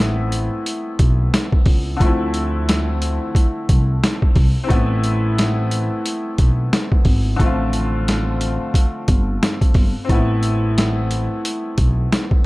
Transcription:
0.00 0.47 A1 loud
0.00 1.95 E3 medium
0.00 1.96 A3 medium
0.00 1.97 B3 medium
0.00 1.94 C4 medium
0.00 1.99 E4 medium
0.00 snare loud
0.32 closed hi-hat medium
0.66 closed hi-hat medium
0.99 1.27 B1 medium
0.99 kick medium
0.99 closed hi-hat medium
1.34 snare loud
1.34 closed hi-hat medium
1.52 kick medium
1.66 1.94 C#2 medium
1.66 kick medium
1.66 open hi-hat medium
1.96 4.64 D3 medium
1.96 4.65 F3 medium
1.96 kick loud
2.00 3.17 D2 loud
2.00 4.66 A3 medium
2.00 4.62 C4 medium
2.00 closed hi-hat medium
2.06 4.69 E4 medium
2.34 closed hi-hat medium
2.69 snare loud
2.69 closed hi-hat medium
3.02 closed hi-hat medium
3.35 kick medium
3.35 closed hi-hat medium
3.69 3.96 C2 medium
3.69 kick medium
3.69 closed hi-hat medium
4.04 snare loud
4.04 closed hi-hat medium
4.22 kick medium
4.36 4.52 C2 medium
4.36 kick medium
4.36 open hi-hat medium
4.64 7.34 E3 medium
4.64 7.32 C4 medium
4.69 5.87 A1 loud
4.69 7.35 A3 medium
4.69 7.36 B3 medium
4.69 kick loud
4.69 closed hi-hat medium
4.73 7.37 E4 medium
5.04 closed hi-hat medium
5.38 snare loud
5.38 closed hi-hat medium
5.71 closed hi-hat medium
6.06 closed hi-hat medium
6.38 6.66 B1 medium
6.38 kick medium
6.38 closed hi-hat medium
6.73 snare loud
6.73 closed hi-hat medium
6.92 kick loud
7.05 7.33 G#1 medium
7.05 kick loud
7.05 open hi-hat medium
7.36 8.56 A1 loud
7.36 10.04 D3 medium
7.36 10.05 F3 medium
7.36 kick loud
7.36 closed hi-hat medium
7.41 10.06 A3 medium
7.41 10.03 C4 medium
7.46 10.08 F4 medium
7.73 closed hi-hat medium
8.08 snare loud
8.08 closed hi-hat medium
8.41 closed hi-hat medium
8.74 kick medium
8.74 closed hi-hat medium
9.08 9.36 G1 medium
9.08 kick medium
9.08 closed hi-hat medium
9.43 snare loud
9.43 closed hi-hat loud
9.61 kick medium
9.61 closed hi-hat medium
9.74 9.91 G1 medium
9.74 kick medium
9.74 open hi-hat soft
10.05 12.46 E3 medium
10.05 12.46 C4 medium
10.09 11.26 A1 loud
10.09 12.46 A3 medium
10.09 12.46 B3 medium
10.09 kick loud
10.09 closed hi-hat medium
10.14 12.46 E4 medium
10.43 closed hi-hat medium
10.78 snare loud
10.78 closed hi-hat medium
11.11 closed hi-hat medium
11.45 closed hi-hat medium
11.78 12.05 B1 medium
11.78 kick medium
11.78 closed hi-hat medium
12.13 snare loud
12.13 closed hi-hat medium
12.31 kick medium

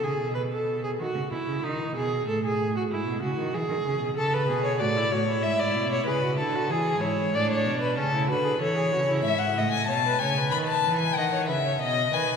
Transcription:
0.03 0.19 C#3 medium
0.03 0.34 G#4 medium
0.20 0.98 B2 medium
0.35 0.41 B4 medium
0.52 0.83 A4 medium
0.84 0.90 G#4 medium
0.99 1.06 D#3 medium
0.99 1.31 F#4 medium
1.15 1.21 C#3 medium
1.31 1.37 B2 medium
1.31 1.65 E4 medium
1.47 1.63 C#3 medium
1.63 1.95 D#3 medium
1.63 1.95 D#4 medium
1.96 2.26 B2 medium
1.96 2.27 G#4 medium
2.27 2.89 A2 medium
2.27 2.43 A4 medium
2.44 2.75 G#4 medium
2.77 2.83 F#4 medium
2.91 3.06 G#2 medium
2.91 3.21 E4 medium
3.06 3.21 B2 medium
3.22 3.37 C#3 medium
3.22 3.56 F#4 medium
3.38 3.53 D#3 medium
3.54 3.60 E3 medium
3.54 4.16 G#4 medium
3.69 3.76 D#3 medium
3.86 4.00 C#3 medium
4.01 4.16 B2 medium
4.17 4.50 C#3 medium
4.17 4.48 A4 medium
4.17 4.35 A4 medium
4.34 4.63 B4 medium
4.49 4.81 B2 medium
4.49 4.82 G#4 medium
4.64 4.80 C#5 medium
4.80 5.11 A2 medium
4.80 4.98 F#4 medium
4.80 5.13 D5 medium
4.97 5.14 E4 medium
5.12 5.45 A2 medium
5.12 5.27 F#4 medium
5.12 5.44 C#5 medium
5.28 6.09 E4 medium
5.43 5.76 G#2 medium
5.43 5.61 E5 medium
5.59 5.91 D5 medium
5.75 6.06 B2 medium
5.92 6.06 C#5 medium
6.06 6.39 C#3 medium
6.06 6.22 G#4 medium
6.06 6.38 B4 medium
6.23 6.38 F#4 medium
6.38 6.71 D3 medium
6.38 6.57 E4 medium
6.38 6.72 A4 medium
6.55 6.73 F#4 medium
6.70 7.00 E3 medium
6.70 7.03 G#4 medium
6.70 7.02 G#4 medium
7.00 7.35 G#2 medium
7.00 7.33 E4 medium
7.00 7.36 C#5 medium
7.33 7.67 A2 medium
7.33 7.99 D4 medium
7.33 7.50 D5 medium
7.50 7.81 C#5 medium
7.65 7.98 B2 medium
7.81 7.97 B4 medium
7.97 8.31 C#3 medium
7.97 8.13 C#4 medium
7.97 8.29 A4 medium
8.13 8.30 E4 medium
8.28 8.59 D3 medium
8.28 8.46 F#4 medium
8.28 8.61 B4 medium
8.44 8.60 G#4 medium
8.60 8.94 E3 medium
8.60 8.76 A4 medium
8.60 9.24 C#5 medium
8.77 8.92 G#4 medium
8.92 9.26 C#3 medium
8.92 8.99 F#4 medium
9.09 9.24 E4 medium
9.23 9.57 G#2 medium
9.23 9.41 E5 medium
9.27 9.59 E5 medium
9.39 9.71 F#5 medium
9.56 9.88 A2 medium
9.56 9.88 D#5 medium
9.71 9.87 G#5 medium
9.88 10.20 B2 medium
9.88 9.95 C#5 medium
9.88 10.20 A5 medium
10.06 10.21 B4 medium
10.19 10.52 C#3 medium
10.19 10.39 C#5 medium
10.19 10.51 G#5 medium
10.38 11.18 B4 medium
10.51 10.84 D#3 medium
10.51 10.58 B5 medium
10.68 10.99 A5 medium
10.86 11.16 E3 medium
11.00 11.17 G#5 medium
11.16 11.50 D#3 medium
11.16 11.24 D#5 medium
11.16 11.48 F#5 medium
11.33 11.48 C#5 medium
11.48 11.80 C#3 medium
11.48 11.55 B4 medium
11.48 11.80 E5 medium
11.66 11.81 C#5 medium
11.81 12.12 B2 medium
11.81 12.15 D#5 medium
11.81 12.13 D#5 medium
12.13 12.37 D#3 medium
12.13 12.37 B4 medium
12.13 12.37 G#5 medium

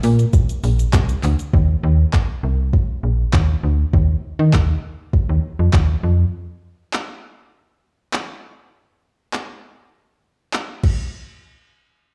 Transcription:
0.03 0.25 A#2 loud
0.03 open hi-hat medium
0.03 shaker medium
0.19 closed hi-hat medium
0.19 shaker medium
0.33 kick loud
0.33 closed hi-hat medium
0.33 shaker medium
0.49 closed hi-hat medium
0.49 shaker medium
0.64 0.85 A#1 medium
0.64 open hi-hat medium
0.64 shaker medium
0.79 closed hi-hat medium
0.79 shaker medium
0.93 1.15 C2 loud
0.93 kick loud
0.93 clap loud
0.93 closed hi-hat medium
0.93 shaker medium
1.09 closed hi-hat medium
1.09 shaker medium
1.23 1.35 D2 loud
1.23 clap medium
1.23 open hi-hat medium
1.23 shaker medium
1.39 closed hi-hat soft
1.39 shaker medium
1.53 1.75 D#2 loud
1.53 kick loud
1.83 2.05 D#2 loud
2.13 kick loud
2.13 clap loud
2.43 2.77 C2 medium
2.73 kick loud
3.03 3.25 A#1 medium
3.33 3.55 D#2 medium
3.33 kick loud
3.33 clap loud
3.63 3.85 D2 medium
3.93 4.15 D#2 loud
3.93 kick loud
4.39 4.55 D#3 medium
4.53 4.75 D#2 medium
4.53 kick loud
4.53 clap medium
5.13 kick loud
5.29 5.40 D#2 medium
5.59 5.70 F2 medium
5.73 5.95 D#2 medium
5.73 kick loud
5.73 clap loud
6.03 6.25 F2 medium
6.93 clap loud
8.13 clap loud
9.33 clap medium
10.53 clap loud
10.83 kick loud
10.83 crash medium

